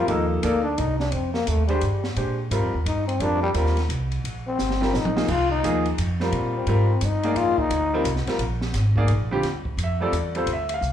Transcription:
Already playing: F4
0.08 D#2 F3 A#3 D#4 A4, ride
0.30 G3
0.43 D2 A#3 D#4 A4 D5, hi-hat pedal, ride
0.64 D4
0.78 C2 D#4, ride
0.99 D4, snare
1.12 F2 C4, ride
1.34 A#3, snare
1.47 D#2 A3, hi-hat pedal, ride
1.67 G3 G#3 D4 G4 C5, ride
1.81 G2, hi-hat pedal, ride
2.04 snare
2.16 A#2 G#3 D4 G4 C5, ride
2.51 G#2 G3 C4 F4 A#4, hi-hat pedal, ride
2.63 F2
2.74 D#2
2.86 G2 D#4, ride
3.08 C4, ride
3.20 F2 G3 C4 D4 F4 A#4, ride
3.43 G3
3.54 D#2 G3 C4 F4 A#4, hi-hat pedal, ride
3.66 snare
3.77 snare, ride
3.89 C2, hi-hat pedal, ride
4.12 ride
4.24 A#1, ride
4.48 C4
4.59 G1, snare, hi-hat pedal
4.70 snare
4.81 G3 C4 F4 A#4, snare
4.93 A#1 D#4, snare, hi-hat pedal
5.05 mid tom
5.16 F3 A#3 D#4 G#4, snare
5.28 C2 F4, kick, crash
5.51 D#4
5.64 D#2 F3 A#3 D#4 G#4, hi-hat pedal, ride
5.86 ride
5.98 F2, hi-hat pedal, ride
6.20 G3 C4 F4 A#4, snare
6.32 A#2, ride
6.57 C4
6.67 G#2 G3 C4 F4 A#4, ride
7.01 G2 D#4, hi-hat pedal, ride
7.23 A#3 D#4 G#4 D5, ride
7.35 F2 F4, ride
7.58 D#4, muted upright bass stroke, kick
7.70 D2, hi-hat pedal, ride
7.94 G3 C4 F4 A#4
8.04 C2, hi-hat pedal, ride
8.16 snare
8.27 G3 C4 F4 A#4, snare, ride
8.38 A#1, ride
8.61 snare
8.74 G#1, snare, hi-hat pedal, ride
8.96 A#3 D#4 G#4 D5, kick
9.08 A#1, ride
9.31 D3 G3 C4 F4 G4
9.43 D2, snare, ride
9.65 kick
9.77 F2, hi-hat pedal, ride
9.84 E5
10.01 G3 C4 F4 A4 D5
10.12 E2, hi-hat pedal, ride
10.35 G3 C4 F4 A4 C5, ride
10.46 D2, ride
10.53 E5
10.69 ride
10.74 F5
10.81 C2, hi-hat pedal

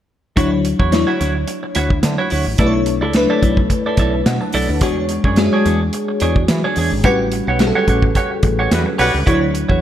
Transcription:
0.36 D2 F#3 D4 E4 F#4 C#5, kick, closed hi-hat
0.51 muted clean electric guitar stroke
0.65 muted clean electric guitar stroke, closed hi-hat
0.79 E2 E4 F#4 C#5, kick
0.92 F#3 D4 E4 C#5, muted clean electric guitar stroke, snare, closed hi-hat
1.07 E4 F#4 C#5
1.20 D2 E4 F#4 C#5, snare, closed hi-hat
1.35 muted clean electric guitar stroke
1.48 muted clean electric guitar stroke, closed hi-hat
1.63 muted clean electric guitar stroke
1.75 D2 E4 F#4 C#5, snare, closed hi-hat
1.90 muted clean electric guitar stroke, kick
2.03 D3, muted clean electric guitar stroke, snare, closed hi-hat
2.18 E4 F#4 C#5
2.30 D2 E4 F#4 C#5, open hi-hat
2.46 A1, muted clean electric guitar stroke
2.58 B1 A3 D4 E4 A4 B4 D5, kick, closed hi-hat
2.66 C#5
2.74 muted clean electric guitar stroke
2.86 muted clean electric guitar stroke, closed hi-hat
3.01 C#2 E4 A4 D5
3.13 A3 D4 E4 B4, muted clean electric guitar stroke, snare, closed hi-hat
3.30 E4 A4 D5
3.43 B1 E4 A4 D5, kick, closed hi-hat
3.57 muted clean electric guitar stroke, kick
3.70 muted clean electric guitar stroke, kick, closed hi-hat
3.86 E4 A4 D5
3.97 B1 E4 A4 D5, kick, closed hi-hat
4.14 muted clean electric guitar stroke
4.26 B2 F#5, muted clean electric guitar stroke, snare, closed hi-hat
4.41 A5, muted clean electric guitar stroke
4.53 B1 E4 A4 D5, open hi-hat
4.69 D2, muted clean electric guitar stroke
4.81 E2 G#3 D4 F#4 G#4 C#5, kick, closed hi-hat
4.97 muted clean electric guitar stroke
5.09 muted clean electric guitar stroke, closed hi-hat
5.24 F#2 D4 G#4 C#5, kick
5.36 G#3 D4 F#4 G#4, muted clean electric guitar stroke, snare, closed hi-hat
5.53 D4 G#4 C#5
5.65 E2 D4 G#4 C#5, snare, closed hi-hat
5.81 muted clean electric guitar stroke
5.93 muted clean electric guitar stroke, closed hi-hat
6.08 muted clean electric guitar stroke
6.20 E2 D4 G#4 C#5, closed hi-hat
6.36 muted clean electric guitar stroke, kick
6.48 E3, muted clean electric guitar stroke, snare, closed hi-hat
6.64 D4 G#4 C#5
6.76 E2 D4 G#4 C#5, open hi-hat
6.91 G#1, muted clean electric guitar stroke
7.04 A1 G3 C#4 F#4 G4 B4 C#5 F#5, kick, closed hi-hat
7.20 muted clean electric guitar stroke
7.32 muted clean electric guitar stroke, closed hi-hat
7.47 B1 G4 C#5 F#5
7.59 G3 C#4 F#4 G#4, muted clean electric guitar stroke, snare, closed hi-hat
7.67 A4
7.75 G4 C#5 F#5
7.88 A1 G4 C#5 F#5, kick, closed hi-hat
8.02 muted clean electric guitar stroke, kick
8.15 G4 C#5 F#5, kick, closed hi-hat
8.32 muted clean electric guitar stroke
8.43 A1, muted clean electric guitar stroke, kick, closed hi-hat
8.59 G4 C#5 F#5
8.71 E2 G3 F#4 B4, muted clean electric guitar stroke, snare, closed hi-hat
8.86 muted clean electric guitar stroke
8.98 B1 G3 F#4 G4 B4 C#5 F#5, open hi-hat
9.14 C#2, muted clean electric guitar stroke
9.26 D2 F#3 D4 E4 F#4 C#5, kick, closed hi-hat
9.41 muted clean electric guitar stroke
9.54 muted clean electric guitar stroke, closed hi-hat
9.69 E2 E4 F#4 C#5, kick

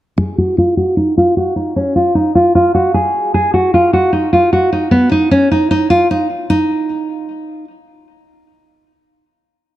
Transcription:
0.18 G#4
0.38 F#4
0.58 F4
0.77 F#4
0.97 D#4
1.17 F4
1.37 F#4
1.56 D#4
1.76 C#4
1.96 F4
2.15 D#4
2.35 F4
2.55 F4
2.75 F#4
2.94 G#4
3.34 G#4
3.54 F#4
3.74 F4
3.93 F#4
4.13 D#4
4.33 F4
4.53 F#4
4.73 D#4
4.91 B3
5.12 D#4
5.31 C#4
5.51 D#4
5.71 D#4
5.90 F4
6.11 D#4
6.50 D#4

